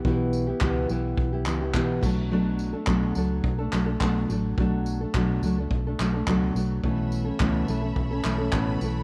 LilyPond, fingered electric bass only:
\new Staff \with { instrumentName = "Fingered electric bass" } { \clef bass \time 4/4 \key b \minor \tempo 4 = 106 b,,4 cis,8 b,,8 b,,8 cis,8 b,,8 b,,8~ | b,,4 b,,8 cis,8 b,,8 b,,8 b,,8 a,,8 | b,,4 b,,8 cis,8 b,,8 b,,8 cis,8 b,,8 | b,,4 cis,8 b,,8 b,,8 b,,8 a,,8 b,,8 | }